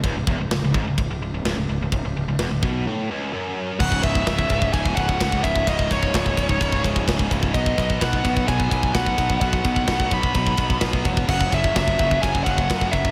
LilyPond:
<<
  \new Staff \with { instrumentName = "Lead electric guitar" } { \time 4/4 \key cis \minor \tempo 4 = 128 r1 | r1 | fis''8 e''8 e''4 gis''8 fis''4 e''8 | dis''8 cis''2 r4. |
dis''8 dis''8 fis''4 gis''4 fis''4 | fis''4. b''4. r4 | fis''8 e''8 e''4 gis''8 fis''4 e''8 | }
  \new Staff \with { instrumentName = "Distorted electric guitar" } { \clef bass \time 4/4 \key cis \minor cis,16 cis,16 e,16 cis,16 cis,16 cis,16 gis,16 cis,16 cis,16 cis,16 cis,16 cis,16 cis,16 cis,16 cis,16 cis,16 | cis,16 cis,16 cis,16 cis,16 e,16 cis,16 b,8 a,8 cis,8 fis,4 | <cis, gis, cis>8 <cis, gis, cis>8 <cis, gis, cis>8 <cis, gis, cis>8 <cis, gis, cis>8 <cis, gis, cis>8 <cis, gis, cis>8 <cis, gis, cis>8 | <cis, gis, cis>8 <cis, gis, cis>8 <cis, gis, cis>8 <cis, gis, cis>8 <cis, gis, cis>8 <cis, gis, cis>8 <cis, gis, cis>8 <cis, gis, cis>8 |
<b, fis b>8 <b, fis b>8 <b, fis b>8 <b, fis b>8 <b, fis b>8 <b, fis b>8 <b, fis b>8 <b, fis b>8 | <b, fis b>8 <b, fis b>8 <b, fis b>8 <b, fis b>8 <b, fis b>8 <b, fis b>8 <b, fis b>8 <b, fis b>8 | <fis, cis fis>8 <fis, cis fis>8 <fis, cis fis>8 <fis, cis fis>8 <fis, cis fis>8 <fis, cis fis>8 <fis, cis fis>8 <fis, cis fis>8 | }
  \new Staff \with { instrumentName = "Fingered electric bass" } { \clef bass \time 4/4 \key cis \minor cis,,16 cis,,16 e,,16 cis,,16 cis,,16 cis,,16 gis,,16 cis,,16 cis,,16 cis,,16 cis,,16 cis,,16 cis,,16 cis,,16 cis,,16 cis,,16 | cis,,16 cis,,16 cis,,16 cis,,16 e,,16 cis,,16 b,,8 r2 | cis,,8 cis,,8 cis,,8 cis,,8 cis,,8 cis,,8 cis,8 cis,,8 | cis,,8 cis,,8 cis,,8 cis,,8 cis,,8 cis,,8 cis,,8 cis,,8 |
b,,8 b,,8 b,,8 b,,8 b,,8 b,,8 b,,8 b,,8 | b,,8 b,,8 b,,8 b,,8 b,,8 b,,8 b,,8 e,,8 | fis,,8 fis,,8 fis,,8 fis,,8 fis,,8 fis,,8 fis,8 fis,,8 | }
  \new DrumStaff \with { instrumentName = "Drums" } \drummode { \time 4/4 <bd rb>8 bd8 <rb sn>8 bd8 <bd rb>4 <rb sn>4 | <bd rb>4 <rb sn>8 bd8 r4 r4 | <cymc bd>16 bd16 <bd cymr>16 bd16 <bd cymr sn>16 bd16 <bd cymr>16 bd16 <bd cymr>16 bd16 <bd cymr>16 bd16 <bd cymr sn>16 bd16 <bd cymr>16 bd16 | <bd cymr>16 bd16 <bd cymr>16 bd16 <bd cymr sn>16 bd16 <bd cymr>16 bd16 <bd cymr>16 bd16 <bd cymr>16 bd16 <bd cymr sn>16 bd16 <bd cymr>16 bd16 |
<bd cymr>16 bd16 <bd cymr>16 bd16 <bd cymr sn>16 bd16 <bd cymr>16 bd16 <bd cymr>16 bd16 <bd cymr>16 bd16 <bd cymr sn>16 bd16 <bd cymr>16 bd16 | <bd cymr>16 bd16 <bd cymr>16 bd16 <bd cymr sn>16 bd16 <bd cymr>16 bd16 <bd cymr>16 bd16 <bd cymr>16 bd16 <bd cymr sn>16 bd16 <bd cymr>16 bd16 | <cymc bd>16 bd16 <bd cymr>16 bd16 <bd cymr sn>16 bd16 <bd cymr>16 bd16 <bd cymr>16 bd16 <bd cymr>16 bd16 <bd cymr sn>16 bd16 <bd cymr>16 bd16 | }
>>